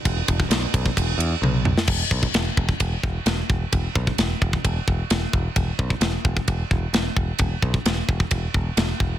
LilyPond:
<<
  \new Staff \with { instrumentName = "Picked electric bass" } { \clef bass \time 4/4 \tempo 4 = 131 e,,8 e,,8 b,,8 b,,8 e,,8 e,8 b,,4 | e,,8 b,,8 e,,8 e,,8 e,,8 e,,8 e,,8 e,,8 | e,,8 b,,8 e,,8 e,,8 e,,8 e,,8 e,,8 e,,8 | e,,8 b,,8 e,,8 e,,8 e,,8 e,,8 e,,8 e,,8 |
e,,8 b,,8 e,,8 e,,8 e,,8 e,,8 e,,8 e,,8 | }
  \new DrumStaff \with { instrumentName = "Drums" } \drummode { \time 4/4 <bd cymr>8 <bd cymr>16 bd16 <cymr sn>8 <bd cymr>16 bd16 <bd cymr>8 cymr8 tommh8 toml16 sn16 | <cymc bd>8 bd16 bd16 <rb sn>8 bd16 bd16 <bd rb>8 bd8 <rb sn>8 bd8 | <bd rb>8 bd16 bd16 <rb sn>8 bd16 bd16 <bd rb>8 bd8 <rb sn>8 bd8 | <bd rb>8 bd16 bd16 <rb sn>8 bd16 bd16 <bd rb>8 bd8 <rb sn>8 bd8 |
<bd rb>8 bd16 bd16 <rb sn>8 bd16 bd16 <bd rb>8 bd8 <rb sn>8 bd8 | }
>>